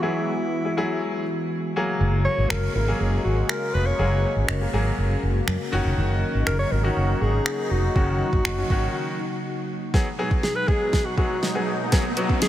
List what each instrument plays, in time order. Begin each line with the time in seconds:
Already playing: analog synth pad E3 G#3 B3 F#4
0.02 grand piano F#3 E4 G#4, alto saxophone E4
0.65 grand piano E4 G#4
0.77 grand piano F#3 E4 G#4
1.76 analog synth pad C#3 G#3 A#3, grand piano F#3 A#3 G#4
2.00 fretless electric bass F#1
2.25 alto saxophone C#5
2.38 fretless electric bass G#1
2.50 fretless electric bass F#1, alto saxophone A#4, finger snap
2.75 fretless electric bass G#1, grand piano A#3 E4, alto saxophone A#4
2.88 grand piano F#3 A#3 G#4
3.00 fretless electric bass F#1, alto saxophone G#4
3.24 fretless electric bass G#1, alto saxophone F#4
3.49 alto saxophone A#4, finger snap
3.74 fretless electric bass F1, alto saxophone B4
3.86 alto saxophone C#5
3.99 fretless electric bass F#1, grand piano F#3 A#3 G#4
4.36 fretless electric bass G#1
4.49 fretless electric bass F#1, finger snap
4.61 grand piano A#3 G#4
4.73 fretless electric bass G#1, grand piano F#3 A#3 G#4
4.98 fretless electric bass F#1
5.23 fretless electric bass F#1
5.48 fretless electric bass F#2, finger snap
5.72 fretless electric bass F#1, grand piano D#3 C#4 F#4, analog synth pad F#3 D#4
5.85 fretless electric bass F1
5.97 fretless electric bass F#1
6.35 fretless electric bass G#1
6.47 fretless electric bass F#1, alto saxophone A#4, finger snap
6.59 alto saxophone C#5
6.72 fretless electric bass G#1, grand piano C#4 F#4, alto saxophone A#4
6.84 grand piano D#3 C#4 F#4, alto saxophone F#4
6.97 fretless electric bass F#1
7.21 fretless electric bass G#1, alto saxophone G#4
7.46 finger snap
7.71 fretless electric bass F1, alto saxophone F#4
7.96 fretless electric bass F#1, grand piano D#3 C#4 F#4, kick
8.33 fretless electric bass G#1, kick
8.45 fretless electric bass F#1, finger snap
8.58 grand piano C#4 F#4
8.70 fretless electric bass G#1, grand piano D#3 C#4 F#4, kick
9.94 analog synth pad B2 F#3 G#3 D#4, grand piano F#3 B3 G#4, kick, snare, riser
10.18 grand piano F#3 B3 G#4
10.31 kick
10.43 alto saxophone G#4, snare
10.56 alto saxophone B4
10.68 grand piano F#3 B3 G#4, alto saxophone G#4, kick
10.93 kick, snare
11.05 alto saxophone F#4
11.17 grand piano F#3 B3 G#4, alto saxophone F#4, kick
11.43 snare
11.55 grand piano F#3 B3 G#4
11.92 grand piano F#3 B3 G#4, analog synth pad A#3, kick, snare, closed hi-hat
12.17 grand piano F#3 B3 F#4, closed hi-hat
12.29 kick
12.42 alto saxophone G#4, snare, closed hi-hat